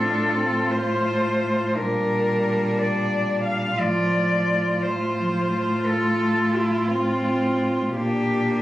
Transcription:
cello
Already playing: A2 F4 A4
0.01 D4
0.35 C4
0.70 A3 C5
1.74 A#2 G3 D4 A#4
2.79 D5
3.45 F5
3.78 A2 F3 F4 D5
4.83 A3 C5
5.18 F3
5.51 A3
5.86 A4
6.55 E4
6.89 C4 F4
7.92 A#2 A#3 D4 G4

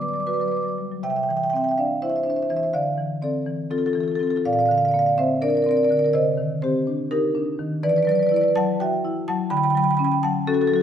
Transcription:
marimba
Already playing: D3
0.01 B4 D5 D6
0.08 D5 D6
0.14 F#3 D5 D6
0.20 D5 D6
0.27 F#4 B4 D5 D6
0.33 B4 D5 D6
0.40 F#3 B4 D5 D6
0.46 B4 D5 D6
0.52 B4 D5 D6
0.57 D6
0.61 F#3 D5 D6
0.68 D5 D6
0.78 G3
0.91 F#3
1.03 C3 E5 G5
1.10 E5 G5
1.16 E5 G5
1.23 E5 G5
1.29 E3 E5 G5
1.37 E5 G5
1.44 E5 G5
1.50 C4 E5 G5
1.56 E5 G5
1.62 E5 G5
1.69 E5 G5
1.78 D4 D5 F5
2.02 E4 C5 E5
2.09 C5 E5
2.16 C5 E5
2.23 D4 C5 E5
2.30 C5 E5
2.36 C5 E5
2.42 C5 E5
2.49 E3 C5 E5
2.56 C5 E5
2.63 C5 E5
2.73 D3 D5 F5
2.98 E3
3.22 C4 A4 D5
3.46 E3
3.71 C4 F4 A4
3.78 F4 A4
3.86 F4 A4
3.93 E3 F4 A4
4.00 F4 A4
4.08 F4 A4
4.16 F4 A4
4.20 C4 A4
4.27 F4 A4
4.36 F4 A4
4.45 A#2 D5 F5
4.53 D5 F5
4.59 D5 F5
4.66 D3 D5 F5
4.71 D5 F5
4.78 D5 F5
4.85 D5 F5
4.91 A#3 D5 F5
4.99 D5 F5
5.06 D5 F5
5.17 C4 C5 E5
5.42 D4 A#4 D5
5.48 A#4 D5
5.55 A#4 D5
5.62 A#4 D5
5.66 C4 A#4
5.71 D5
5.75 A#4 D5
5.83 A#4 D5
5.89 D3 A#4 D5
5.97 A#4 D5
6.04 A#4 D5
6.13 C3 C5 D#5
6.37 D#3
6.62 C4 G4 C5
6.87 D4
7.11 D#4 G4 A#4
7.35 D4
7.59 D#3
7.83 E3 B4 D5
7.89 B4 D5
7.96 B4 D5
8.03 B4 D5
8.07 F#3 D5
8.11 B4
8.15 B4 D5
8.23 B4 D5
8.29 E4 D5
8.34 B4 D5
8.41 B4 D5
8.48 B4
8.56 F#3 F#5 A5
8.80 F#4 E5 G5
9.05 E4
9.28 F#3 F#5 A5
9.50 D3 G5 B5
9.57 G5 B5
9.64 G5 B5
9.70 G5 B5
9.75 F#3 G5 B5
9.82 G5 B5
9.89 G5 B5
9.95 G5 B5
9.99 C#4 G5
10.04 G5 B5
10.12 G5 B5
10.23 F#3 F#5 A5
10.47 C#4 F#4 A4
10.54 F#4 A4
10.61 F#4 A4
10.67 F#3 F#4 A4
10.74 F#4 A4

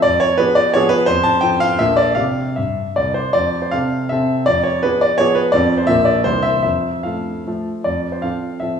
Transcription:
grand piano
0.02 F2 D5
0.20 C#5
0.38 F3 B3 G#4 B4
0.55 D5
0.74 F3 B3 G#4 C#5
0.89 B4
1.06 F2 C5
1.24 A5
1.41 F3 C4 A4 G5
1.60 F5
1.79 A#1 F3 A#3 A4 E5
1.97 D5
2.15 C3 C4 G4 F5
2.56 G2 E5
2.96 C2 D5
3.14 C5
3.33 F2 D5
3.62 C5
3.71 C3 C4 A4 F5
4.09 C3 C4 A4 E5
4.46 F2 D5
4.64 C#5
4.83 F3 B3 G#4 B4
5.01 D5
5.18 F3 B3 G#4 C#5
5.35 B4
5.52 F2 F3 C4 A4 D5
5.78 C5
5.87 A#1 F3 A#3 A#4 E5
6.05 D5
6.24 C2 E3 A#3 G4 C5
6.43 E5
6.63 F2 E5
7.03 F3 A3 A4 F5
7.47 F3 A3 A4
7.84 F2 D5
8.12 C5
8.22 F3 C4 A4 F5
8.60 F3 C4 A4 E5

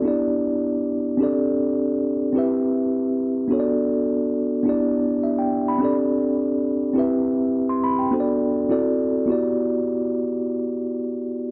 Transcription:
tine electric piano
0.02 B3 D4 E4 G4
0.08 D5
1.17 C4 D4 G4
1.22 A4 D5
2.33 C4 E4 G4
2.37 B4 E5
3.48 B3 D4 F#4
3.52 A4 C#5
3.60 D5
4.63 B3 D4 E4
4.68 G4 D5
5.23 E5
5.39 G5
5.68 B5
5.79 C4 D4 G4
5.83 A4 D5
6.94 C4 E4 G4
6.98 B4 E5
7.69 C6
7.84 B5
7.99 G5
8.11 B3 D4 F#4 A4 C5
8.20 D5
8.69 C4 E4 F#4 A4 D5
9.26 B3 E4 F#4
9.30 G4 D5

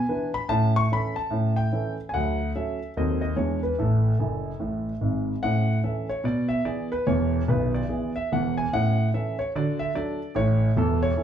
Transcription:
grand piano
Already playing: G#5
0.09 E3 D4 B4
0.34 B5
0.49 A2 C#4 A5
0.76 C#6
0.92 E3 C#4 A4 B5
1.16 A5
1.31 A2 C#4
1.56 G5
1.72 E3 C#4 A4
2.09 G#5
2.14 D2 F#3 F#5
2.56 F#3 C#4 A4 E5
2.97 D#2 F#3 C4 A4 D#5
3.21 D#5
3.36 E2 E3 G#3 D4 G#4 C#5
3.63 B4
3.78 A1 A2 A4
4.19 F#1 F#2
4.60 A1 A2
5.01 G#1 G#2
5.43 A2 C#4 F#5
5.83 E3 C#4 A4 E5
6.09 C#5
6.24 B2 D5
6.49 E5
6.65 E3 B3 G#4 D5
6.92 B4
7.07 E1 E2 C#5
7.48 B0 B1 B4
7.74 D5
7.89 E3 B3 G#4
8.16 E5
8.32 E1 E2 F#5
8.57 G#5
8.73 A2 C#4 F#5
9.14 E3 C#4 A4 E5
9.39 C#5
9.55 D3 F#4 D5
9.79 E5
9.95 F#3 D4 A4 D5
10.35 A1 A2 C#5
10.76 E1 E2 A4
11.03 C#5
11.17 E3 E4 A4

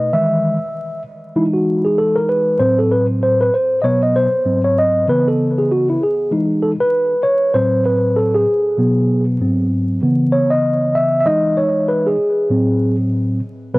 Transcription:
tine electric piano
Already playing: D#5
0.13 D#3 E3 G#3 E5
1.36 E3 G#3 D#4 E4
1.53 F#4
1.85 G#4
1.98 A4
2.16 A#4
2.29 B4
2.59 A2 F#3 C4 C5
2.78 A4
2.91 B4
3.23 C5
3.41 B4
3.54 C5
3.82 B2 F#3 B3 C#5 D#5
4.03 D#5
4.16 C5
4.45 G#2 F#3 C4
4.65 C#5
4.79 D#5
5.07 C#3 E3 B3 B4
5.28 A4
5.58 G#4
5.72 F#4
5.90 E4
6.04 G#4
6.31 E3 G#3 D#4
6.62 A4
6.80 B4
7.23 C#5
7.54 A2 F#3 C4 C5
7.86 B4
8.16 A4
8.34 G#4
8.78 B2 F#3 B3
9.40 G#2 F#3 C4
10.02 C#3 E3 B3
10.32 C#5
10.50 D#5
10.95 E5
11.20 E5
11.25 E3 G#3 D#4 D#5
11.57 C#5
11.88 B4
12.06 G#4
12.50 A2 F#3 C4
13.74 B2 F#3 B3 B4

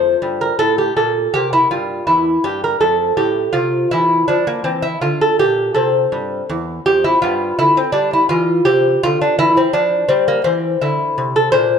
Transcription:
lute
Already playing: F2 A3 C5
0.22 G2
0.41 A#4
0.59 A2 A4
0.78 G4
0.97 A#2 A4
1.34 C3 A#3 G4
1.53 E4
1.71 G2 F4
2.07 E2 E4
2.44 G2 G4
2.64 A#4
2.81 F2 A3 A4
3.17 A2 G4
3.53 C3 F4
3.91 E3 E4
4.28 F3 D4
4.47 A#3
4.64 E3 C4
4.82 E4
5.01 D3 F4
5.21 A4
5.39 A#2 G4
5.74 C3 C4 A4
6.12 G2
6.50 E2
6.86 F2 G4
7.04 E4
7.22 G2 B3 F4
7.59 D3 E4
7.77 C4
7.92 G3 D4
8.13 E4
8.29 E3 F4
8.65 C3 C4 G4
9.03 D3 F4
9.21 D4
9.39 E3 E4
9.57 C4
9.73 F3 D4
10.09 G3 C4
10.28 A#3
10.44 E3 C4
10.82 D3 E4
11.18 C3
11.36 A4
11.52 A#2 D4 C5

